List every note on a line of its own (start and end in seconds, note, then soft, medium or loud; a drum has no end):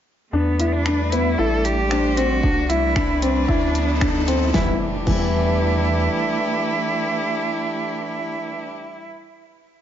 0.32 1.36 E2 medium
0.32 3.49 A3 medium
0.32 0.74 B3 medium
0.32 0.51 D4 medium
0.32 riser medium
0.45 3.90 D4 medium
0.60 3.49 G3 medium
0.60 0.77 E4 medium
0.60 closed hi-hat medium
0.72 1.13 D4 medium
0.80 1.38 B4 medium
0.86 1.04 D4 medium
0.86 finger snap medium
1.12 1.30 B3 medium
1.12 1.40 E4 medium
1.12 closed hi-hat medium
1.38 2.41 A1 medium
1.38 1.73 E4 medium
1.38 1.66 A4 loud
1.64 2.18 G4 loud
1.64 closed hi-hat medium
1.86 2.44 C5 medium
1.91 2.08 D4 medium
1.91 finger snap medium
2.17 2.35 C4 medium
2.17 2.71 F#4 medium
2.17 closed hi-hat medium
2.43 3.46 C2 medium
2.43 2.61 D4 medium
2.43 kick loud
2.69 3.23 E4 medium
2.69 2.87 E4 medium
2.69 closed hi-hat medium
2.91 3.91 B4 medium
2.96 3.13 D4 medium
2.96 finger snap medium
2.96 kick loud
3.22 3.40 C4 medium
3.22 4.27 D4 medium
3.22 closed hi-hat medium
3.48 4.51 D2 medium
3.48 4.54 F#3 medium
3.48 3.83 E4 medium
3.48 kick loud
3.63 4.55 B3 medium
3.72 4.54 E4 medium
3.72 closed hi-hat medium
3.97 4.54 A4 medium
4.01 4.19 D4 medium
4.01 finger snap medium
4.01 kick loud
4.28 4.45 C4 medium
4.28 closed hi-hat medium
4.54 4.69 E2 loud
4.54 4.69 E3 medium
4.54 8.54 E3 medium
4.54 4.69 E4 medium
4.54 kick loud
4.54 snare medium
4.54 impact medium
4.58 4.71 G3 medium
4.58 8.60 A3 medium
4.58 4.73 B3 medium
4.66 8.68 D4 medium
4.66 4.75 E4 medium
4.77 8.76 G4 medium
5.07 6.08 E2 medium
5.07 9.05 E3 medium
5.07 9.09 G3 medium
5.07 9.07 E4 loud
5.07 kick loud
5.07 crash medium
5.15 9.13 B3 medium
5.19 9.17 E4 medium